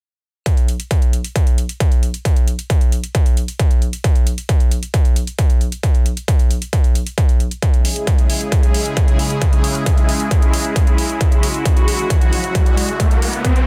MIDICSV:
0, 0, Header, 1, 4, 480
1, 0, Start_track
1, 0, Tempo, 447761
1, 494, Time_signature, 4, 2, 24, 8
1, 14652, End_track
2, 0, Start_track
2, 0, Title_t, "Supersaw synth"
2, 0, Program_c, 0, 81
2, 8174, Note_on_c, 0, 56, 75
2, 8174, Note_on_c, 0, 64, 71
2, 8174, Note_on_c, 0, 68, 88
2, 8175, Note_on_c, 0, 49, 80
2, 11976, Note_off_c, 0, 68, 0
2, 12014, Note_on_c, 0, 66, 88
2, 14652, Note_off_c, 0, 49, 0
2, 14652, Note_off_c, 0, 56, 0
2, 14652, Note_off_c, 0, 64, 0
2, 14652, Note_off_c, 0, 66, 0
2, 14652, End_track
3, 0, Start_track
3, 0, Title_t, "Riser"
3, 0, Program_c, 1, 103
3, 12014, Note_on_c, 1, 60, 75
3, 14652, Note_off_c, 1, 60, 0
3, 14652, End_track
4, 0, Start_track
4, 0, Title_t, "Drums"
4, 494, Note_on_c, 9, 36, 113
4, 494, Note_on_c, 9, 42, 90
4, 601, Note_off_c, 9, 36, 0
4, 601, Note_off_c, 9, 42, 0
4, 614, Note_on_c, 9, 42, 39
4, 721, Note_off_c, 9, 42, 0
4, 734, Note_on_c, 9, 42, 65
4, 841, Note_off_c, 9, 42, 0
4, 854, Note_on_c, 9, 42, 38
4, 961, Note_off_c, 9, 42, 0
4, 973, Note_on_c, 9, 36, 115
4, 974, Note_on_c, 9, 42, 92
4, 1081, Note_off_c, 9, 36, 0
4, 1081, Note_off_c, 9, 42, 0
4, 1094, Note_on_c, 9, 42, 39
4, 1201, Note_off_c, 9, 42, 0
4, 1214, Note_on_c, 9, 42, 66
4, 1321, Note_off_c, 9, 42, 0
4, 1334, Note_on_c, 9, 42, 38
4, 1442, Note_off_c, 9, 42, 0
4, 1453, Note_on_c, 9, 36, 110
4, 1454, Note_on_c, 9, 42, 95
4, 1561, Note_off_c, 9, 36, 0
4, 1561, Note_off_c, 9, 42, 0
4, 1574, Note_on_c, 9, 42, 39
4, 1681, Note_off_c, 9, 42, 0
4, 1694, Note_on_c, 9, 42, 65
4, 1801, Note_off_c, 9, 42, 0
4, 1814, Note_on_c, 9, 42, 38
4, 1922, Note_off_c, 9, 42, 0
4, 1933, Note_on_c, 9, 36, 115
4, 1934, Note_on_c, 9, 42, 90
4, 2041, Note_off_c, 9, 36, 0
4, 2042, Note_off_c, 9, 42, 0
4, 2054, Note_on_c, 9, 42, 38
4, 2161, Note_off_c, 9, 42, 0
4, 2174, Note_on_c, 9, 42, 40
4, 2281, Note_off_c, 9, 42, 0
4, 2294, Note_on_c, 9, 42, 35
4, 2401, Note_off_c, 9, 42, 0
4, 2413, Note_on_c, 9, 36, 114
4, 2414, Note_on_c, 9, 42, 88
4, 2521, Note_off_c, 9, 36, 0
4, 2522, Note_off_c, 9, 42, 0
4, 2534, Note_on_c, 9, 42, 38
4, 2642, Note_off_c, 9, 42, 0
4, 2654, Note_on_c, 9, 42, 64
4, 2761, Note_off_c, 9, 42, 0
4, 2774, Note_on_c, 9, 42, 36
4, 2882, Note_off_c, 9, 42, 0
4, 2893, Note_on_c, 9, 36, 118
4, 2894, Note_on_c, 9, 42, 92
4, 3001, Note_off_c, 9, 36, 0
4, 3001, Note_off_c, 9, 42, 0
4, 3014, Note_on_c, 9, 42, 40
4, 3121, Note_off_c, 9, 42, 0
4, 3134, Note_on_c, 9, 42, 64
4, 3241, Note_off_c, 9, 42, 0
4, 3254, Note_on_c, 9, 42, 38
4, 3361, Note_off_c, 9, 42, 0
4, 3374, Note_on_c, 9, 36, 117
4, 3374, Note_on_c, 9, 42, 91
4, 3481, Note_off_c, 9, 36, 0
4, 3481, Note_off_c, 9, 42, 0
4, 3494, Note_on_c, 9, 42, 39
4, 3601, Note_off_c, 9, 42, 0
4, 3614, Note_on_c, 9, 42, 64
4, 3721, Note_off_c, 9, 42, 0
4, 3734, Note_on_c, 9, 42, 36
4, 3841, Note_off_c, 9, 42, 0
4, 3854, Note_on_c, 9, 36, 123
4, 3854, Note_on_c, 9, 42, 87
4, 3961, Note_off_c, 9, 36, 0
4, 3961, Note_off_c, 9, 42, 0
4, 3974, Note_on_c, 9, 42, 38
4, 4081, Note_off_c, 9, 42, 0
4, 4094, Note_on_c, 9, 42, 38
4, 4201, Note_off_c, 9, 42, 0
4, 4214, Note_on_c, 9, 42, 35
4, 4321, Note_off_c, 9, 42, 0
4, 4334, Note_on_c, 9, 36, 119
4, 4334, Note_on_c, 9, 42, 83
4, 4441, Note_off_c, 9, 36, 0
4, 4441, Note_off_c, 9, 42, 0
4, 4454, Note_on_c, 9, 42, 38
4, 4561, Note_off_c, 9, 42, 0
4, 4574, Note_on_c, 9, 42, 62
4, 4681, Note_off_c, 9, 42, 0
4, 4694, Note_on_c, 9, 42, 36
4, 4801, Note_off_c, 9, 42, 0
4, 4814, Note_on_c, 9, 36, 118
4, 4814, Note_on_c, 9, 42, 87
4, 4921, Note_off_c, 9, 36, 0
4, 4921, Note_off_c, 9, 42, 0
4, 4934, Note_on_c, 9, 42, 37
4, 5041, Note_off_c, 9, 42, 0
4, 5054, Note_on_c, 9, 42, 63
4, 5161, Note_off_c, 9, 42, 0
4, 5174, Note_on_c, 9, 42, 35
4, 5281, Note_off_c, 9, 42, 0
4, 5294, Note_on_c, 9, 36, 120
4, 5294, Note_on_c, 9, 42, 92
4, 5401, Note_off_c, 9, 36, 0
4, 5401, Note_off_c, 9, 42, 0
4, 5413, Note_on_c, 9, 42, 38
4, 5521, Note_off_c, 9, 42, 0
4, 5533, Note_on_c, 9, 42, 63
4, 5641, Note_off_c, 9, 42, 0
4, 5653, Note_on_c, 9, 42, 37
4, 5760, Note_off_c, 9, 42, 0
4, 5773, Note_on_c, 9, 42, 85
4, 5774, Note_on_c, 9, 36, 124
4, 5880, Note_off_c, 9, 42, 0
4, 5881, Note_off_c, 9, 36, 0
4, 5893, Note_on_c, 9, 42, 38
4, 6000, Note_off_c, 9, 42, 0
4, 6013, Note_on_c, 9, 42, 39
4, 6120, Note_off_c, 9, 42, 0
4, 6133, Note_on_c, 9, 42, 34
4, 6241, Note_off_c, 9, 42, 0
4, 6254, Note_on_c, 9, 36, 121
4, 6254, Note_on_c, 9, 42, 84
4, 6361, Note_off_c, 9, 36, 0
4, 6361, Note_off_c, 9, 42, 0
4, 6374, Note_on_c, 9, 42, 35
4, 6481, Note_off_c, 9, 42, 0
4, 6494, Note_on_c, 9, 42, 59
4, 6601, Note_off_c, 9, 42, 0
4, 6614, Note_on_c, 9, 42, 36
4, 6721, Note_off_c, 9, 42, 0
4, 6734, Note_on_c, 9, 36, 122
4, 6734, Note_on_c, 9, 42, 86
4, 6841, Note_off_c, 9, 36, 0
4, 6841, Note_off_c, 9, 42, 0
4, 6854, Note_on_c, 9, 42, 37
4, 6961, Note_off_c, 9, 42, 0
4, 6974, Note_on_c, 9, 42, 60
4, 7081, Note_off_c, 9, 42, 0
4, 7094, Note_on_c, 9, 42, 35
4, 7201, Note_off_c, 9, 42, 0
4, 7214, Note_on_c, 9, 36, 118
4, 7214, Note_on_c, 9, 42, 87
4, 7321, Note_off_c, 9, 36, 0
4, 7321, Note_off_c, 9, 42, 0
4, 7334, Note_on_c, 9, 42, 37
4, 7441, Note_off_c, 9, 42, 0
4, 7454, Note_on_c, 9, 42, 60
4, 7561, Note_off_c, 9, 42, 0
4, 7574, Note_on_c, 9, 42, 35
4, 7681, Note_off_c, 9, 42, 0
4, 7694, Note_on_c, 9, 36, 121
4, 7694, Note_on_c, 9, 42, 82
4, 7801, Note_off_c, 9, 36, 0
4, 7801, Note_off_c, 9, 42, 0
4, 7814, Note_on_c, 9, 42, 36
4, 7922, Note_off_c, 9, 42, 0
4, 7934, Note_on_c, 9, 42, 36
4, 8042, Note_off_c, 9, 42, 0
4, 8054, Note_on_c, 9, 42, 31
4, 8162, Note_off_c, 9, 42, 0
4, 8173, Note_on_c, 9, 36, 115
4, 8174, Note_on_c, 9, 42, 87
4, 8281, Note_off_c, 9, 36, 0
4, 8281, Note_off_c, 9, 42, 0
4, 8294, Note_on_c, 9, 42, 37
4, 8401, Note_off_c, 9, 42, 0
4, 8414, Note_on_c, 9, 46, 100
4, 8521, Note_off_c, 9, 46, 0
4, 8534, Note_on_c, 9, 42, 36
4, 8641, Note_off_c, 9, 42, 0
4, 8654, Note_on_c, 9, 36, 113
4, 8654, Note_on_c, 9, 42, 84
4, 8761, Note_off_c, 9, 36, 0
4, 8761, Note_off_c, 9, 42, 0
4, 8774, Note_on_c, 9, 42, 37
4, 8881, Note_off_c, 9, 42, 0
4, 8894, Note_on_c, 9, 46, 93
4, 9001, Note_off_c, 9, 46, 0
4, 9014, Note_on_c, 9, 42, 35
4, 9121, Note_off_c, 9, 42, 0
4, 9134, Note_on_c, 9, 36, 117
4, 9134, Note_on_c, 9, 42, 87
4, 9241, Note_off_c, 9, 36, 0
4, 9241, Note_off_c, 9, 42, 0
4, 9254, Note_on_c, 9, 42, 37
4, 9361, Note_off_c, 9, 42, 0
4, 9374, Note_on_c, 9, 46, 102
4, 9481, Note_off_c, 9, 46, 0
4, 9494, Note_on_c, 9, 42, 37
4, 9601, Note_off_c, 9, 42, 0
4, 9613, Note_on_c, 9, 42, 82
4, 9614, Note_on_c, 9, 36, 113
4, 9721, Note_off_c, 9, 36, 0
4, 9721, Note_off_c, 9, 42, 0
4, 9734, Note_on_c, 9, 42, 37
4, 9841, Note_off_c, 9, 42, 0
4, 9854, Note_on_c, 9, 46, 89
4, 9961, Note_off_c, 9, 46, 0
4, 9974, Note_on_c, 9, 42, 33
4, 10081, Note_off_c, 9, 42, 0
4, 10093, Note_on_c, 9, 42, 88
4, 10094, Note_on_c, 9, 36, 114
4, 10201, Note_off_c, 9, 36, 0
4, 10201, Note_off_c, 9, 42, 0
4, 10214, Note_on_c, 9, 42, 39
4, 10321, Note_off_c, 9, 42, 0
4, 10334, Note_on_c, 9, 46, 98
4, 10441, Note_off_c, 9, 46, 0
4, 10453, Note_on_c, 9, 42, 37
4, 10561, Note_off_c, 9, 42, 0
4, 10573, Note_on_c, 9, 42, 91
4, 10574, Note_on_c, 9, 36, 114
4, 10680, Note_off_c, 9, 42, 0
4, 10681, Note_off_c, 9, 36, 0
4, 10694, Note_on_c, 9, 42, 38
4, 10801, Note_off_c, 9, 42, 0
4, 10813, Note_on_c, 9, 46, 86
4, 10921, Note_off_c, 9, 46, 0
4, 10934, Note_on_c, 9, 42, 37
4, 11041, Note_off_c, 9, 42, 0
4, 11054, Note_on_c, 9, 36, 107
4, 11054, Note_on_c, 9, 42, 90
4, 11161, Note_off_c, 9, 36, 0
4, 11161, Note_off_c, 9, 42, 0
4, 11174, Note_on_c, 9, 42, 39
4, 11281, Note_off_c, 9, 42, 0
4, 11294, Note_on_c, 9, 46, 98
4, 11401, Note_off_c, 9, 46, 0
4, 11414, Note_on_c, 9, 42, 37
4, 11521, Note_off_c, 9, 42, 0
4, 11534, Note_on_c, 9, 36, 113
4, 11534, Note_on_c, 9, 42, 86
4, 11641, Note_off_c, 9, 36, 0
4, 11641, Note_off_c, 9, 42, 0
4, 11654, Note_on_c, 9, 42, 37
4, 11761, Note_off_c, 9, 42, 0
4, 11774, Note_on_c, 9, 46, 85
4, 11881, Note_off_c, 9, 46, 0
4, 11894, Note_on_c, 9, 42, 34
4, 12002, Note_off_c, 9, 42, 0
4, 12014, Note_on_c, 9, 36, 108
4, 12014, Note_on_c, 9, 42, 94
4, 12121, Note_off_c, 9, 36, 0
4, 12121, Note_off_c, 9, 42, 0
4, 12134, Note_on_c, 9, 42, 39
4, 12241, Note_off_c, 9, 42, 0
4, 12254, Note_on_c, 9, 46, 98
4, 12361, Note_off_c, 9, 46, 0
4, 12374, Note_on_c, 9, 42, 38
4, 12481, Note_off_c, 9, 42, 0
4, 12494, Note_on_c, 9, 36, 112
4, 12494, Note_on_c, 9, 42, 95
4, 12601, Note_off_c, 9, 36, 0
4, 12601, Note_off_c, 9, 42, 0
4, 12614, Note_on_c, 9, 42, 41
4, 12721, Note_off_c, 9, 42, 0
4, 12734, Note_on_c, 9, 46, 85
4, 12841, Note_off_c, 9, 46, 0
4, 12854, Note_on_c, 9, 42, 39
4, 12961, Note_off_c, 9, 42, 0
4, 12974, Note_on_c, 9, 36, 108
4, 12974, Note_on_c, 9, 42, 96
4, 13081, Note_off_c, 9, 36, 0
4, 13081, Note_off_c, 9, 42, 0
4, 13094, Note_on_c, 9, 42, 40
4, 13201, Note_off_c, 9, 42, 0
4, 13214, Note_on_c, 9, 46, 98
4, 13321, Note_off_c, 9, 46, 0
4, 13334, Note_on_c, 9, 42, 39
4, 13441, Note_off_c, 9, 42, 0
4, 13454, Note_on_c, 9, 36, 112
4, 13454, Note_on_c, 9, 42, 92
4, 13561, Note_off_c, 9, 36, 0
4, 13561, Note_off_c, 9, 42, 0
4, 13574, Note_on_c, 9, 42, 40
4, 13681, Note_off_c, 9, 42, 0
4, 13694, Note_on_c, 9, 46, 88
4, 13801, Note_off_c, 9, 46, 0
4, 13814, Note_on_c, 9, 42, 36
4, 13921, Note_off_c, 9, 42, 0
4, 13934, Note_on_c, 9, 36, 109
4, 13934, Note_on_c, 9, 42, 93
4, 14041, Note_off_c, 9, 36, 0
4, 14041, Note_off_c, 9, 42, 0
4, 14054, Note_on_c, 9, 42, 40
4, 14162, Note_off_c, 9, 42, 0
4, 14174, Note_on_c, 9, 46, 101
4, 14282, Note_off_c, 9, 46, 0
4, 14294, Note_on_c, 9, 42, 40
4, 14402, Note_off_c, 9, 42, 0
4, 14414, Note_on_c, 9, 36, 113
4, 14415, Note_on_c, 9, 42, 98
4, 14521, Note_off_c, 9, 36, 0
4, 14522, Note_off_c, 9, 42, 0
4, 14535, Note_on_c, 9, 42, 41
4, 14642, Note_off_c, 9, 42, 0
4, 14652, End_track
0, 0, End_of_file